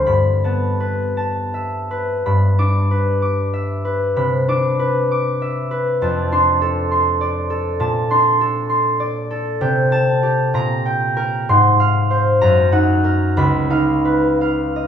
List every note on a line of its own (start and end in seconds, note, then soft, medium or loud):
0.00 1.28 E5 soft
0.06 2.25 G2 soft
0.06 2.25 B5 soft
0.44 4.35 B3 soft
0.44 1.16 A5 soft
0.80 1.90 B4 soft
1.17 2.29 A5 soft
1.54 3.52 E5 soft
1.91 2.90 B4 soft
2.26 4.19 G2 soft
2.26 4.15 B5 soft
2.59 4.47 D4 soft
2.59 3.21 D6 medium
2.91 3.84 B4 soft
3.22 4.47 D6 soft
3.53 5.41 E5 soft
3.85 4.78 B4 soft
4.16 6.04 C3 soft
4.16 6.04 B5 soft
4.48 6.31 D4 soft
4.48 5.10 D6 medium
4.79 5.70 B4 soft
5.11 9.01 D6 soft
5.42 6.04 E5 soft
5.71 6.04 B4 soft
6.02 7.83 F2 soft
6.02 7.79 A5 soft
6.32 8.09 D4 soft
6.32 6.90 C6 medium
6.62 7.49 A4 soft
6.91 8.09 C6 soft
7.21 8.99 D5 soft
7.50 8.40 A4 soft
7.80 9.64 A#2 medium
7.80 9.91 A5 soft
8.10 9.64 D4 soft
8.10 8.68 C6 medium
8.41 9.29 A4 soft
8.69 10.57 C6 soft
9.00 9.64 D5 soft
9.31 10.57 A4 soft
9.61 10.57 C3 medium
9.61 10.84 G5 medium
9.92 10.57 A5 medium
10.23 11.50 G4 soft
10.54 11.51 A#2 medium
10.54 11.51 A#5 medium
10.86 11.51 G5 medium
11.17 11.51 A#4 medium
11.49 12.44 G#2 medium
11.49 12.44 C6 medium
11.80 12.44 F5 medium
12.10 12.44 C5 soft
12.41 13.39 F#2 medium
12.41 13.39 A#5 medium
12.72 13.69 D#4 soft
12.72 13.39 F#5 soft
13.04 13.39 A#4 soft
13.37 14.87 C#2 medium
13.37 14.87 B5 medium
13.70 14.87 D#4 soft
13.70 14.40 F5 medium
14.05 14.87 B4 soft
14.41 14.87 F5 soft
14.76 14.87 D#5 soft